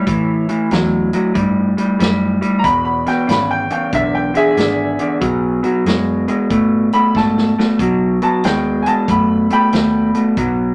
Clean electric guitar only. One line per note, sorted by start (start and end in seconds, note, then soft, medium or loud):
0.07 0.45 A2 medium
0.07 0.45 E3 medium
0.49 0.69 A2 medium
0.49 0.70 E3 medium
0.72 1.10 A2 medium
0.72 1.10 F#3 medium
1.13 1.33 A2 medium
1.13 1.34 F#3 medium
1.34 1.73 A2 medium
1.34 1.73 G3 medium
1.77 1.98 A2 medium
1.77 1.98 G3 medium
1.99 2.38 A2 medium
1.99 2.38 G3 medium
2.41 2.62 A2 medium
2.41 2.62 G3 medium
2.64 3.02 E2 medium
2.64 3.03 B2 medium
3.06 3.26 E2 medium
3.06 3.27 B2 medium
3.27 3.66 E2 medium
3.27 3.66 C#3 medium
3.71 3.91 E2 medium
3.71 3.91 C#3 medium
3.93 4.31 E2 medium
3.93 4.31 D3 medium
4.34 4.55 E2 medium
4.34 4.55 D3 medium
4.57 4.95 E2 medium
4.57 4.96 D3 medium
4.99 5.20 E2 medium
4.99 5.20 D3 medium
5.21 5.59 B2 medium
5.21 5.59 F#3 medium
5.63 5.84 B2 medium
5.63 5.84 F#3 medium
5.87 6.25 B2 medium
5.87 6.25 G#3 medium
6.28 6.48 B2 medium
6.28 6.49 G#3 medium
6.51 6.89 B2 medium
6.51 6.89 A3 medium
6.94 7.14 B2 medium
6.94 7.14 A3 medium
7.16 7.54 B2 medium
7.16 7.54 A3 medium
7.58 7.78 B2 medium
7.58 7.78 A3 medium
7.80 8.18 B2 medium
7.80 8.18 F#3 medium
8.22 8.42 B2 medium
8.22 8.42 F#3 medium
8.44 8.82 B2 medium
8.44 8.83 G#3 medium
8.87 9.07 B2 medium
8.87 9.07 G#3 medium
9.09 9.47 B2 medium
9.09 9.47 A3 loud
9.50 9.71 B2 medium
9.50 9.71 A3 medium
9.73 10.11 B2 medium
9.73 10.11 A3 medium
10.15 10.35 B2 medium
10.15 10.35 A3 medium
10.38 10.75 B2 medium
10.38 10.75 F#3 medium